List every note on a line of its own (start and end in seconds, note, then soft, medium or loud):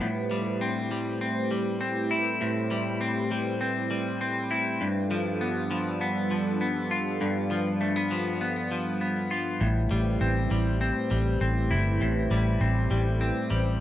0.01 2.40 A2 medium
0.01 4.77 A3 medium
0.01 4.77 E4 medium
0.01 4.77 G4 medium
0.01 13.80 B4 medium
0.01 4.77 C5 medium
0.31 0.91 G3 medium
0.61 1.20 C4 soft
0.91 1.51 G3 soft
1.21 1.79 C4 soft
1.51 2.71 G3 soft
1.81 3.00 C4 medium
2.11 4.50 E4 medium
2.41 4.80 A2 medium
2.71 3.31 G3 medium
3.01 3.60 C4 medium
3.31 3.90 G3 soft
3.61 4.20 C4 medium
3.91 5.10 G3 medium
4.21 4.87 C4 medium
4.51 4.87 E4 medium
4.81 7.20 G2 medium
4.81 9.57 G3 medium
4.81 9.57 D4 medium
4.81 9.57 F4 medium
4.81 9.57 A4 medium
5.11 5.70 F3 medium
5.41 6.00 B3 medium
5.71 6.30 F3 soft
6.01 6.60 B3 medium
6.31 7.50 F3 soft
6.61 7.80 B3 medium
6.91 9.30 F4 medium
7.21 9.60 G2 medium
7.51 8.10 F3 medium
7.81 7.96 A3 soft
7.96 8.40 B3 soft
8.11 8.70 F3 medium
8.41 9.00 B3 soft
8.71 9.67 F3 soft
9.01 9.67 B3 soft
9.31 9.67 F4 medium
9.61 9.87 A1 medium
9.61 12.00 A2 medium
9.61 13.80 A3 medium
9.61 13.80 E4 medium
9.61 13.80 G4 medium
9.61 13.80 C5 medium
9.91 10.17 A1 medium
9.91 10.51 G3 medium
10.21 10.47 A1 medium
10.21 10.80 C4 medium
10.51 10.91 A1 medium
10.51 11.10 G3 medium
10.81 11.40 C4 medium
11.11 11.37 A1 medium
11.11 12.31 G3 medium
11.41 11.72 A1 medium
11.41 12.60 C4 soft
11.71 11.97 G1 medium
11.71 13.80 E4 medium
12.01 12.27 A1 medium
12.01 13.80 A2 medium
12.31 12.57 A1 medium
12.31 12.90 G3 medium
12.61 12.87 A1 medium
12.61 13.20 C4 soft
12.91 13.31 A1 medium
12.91 13.50 G3 soft
13.21 13.79 C4 medium
13.50 13.77 A1 medium
13.50 13.80 G3 medium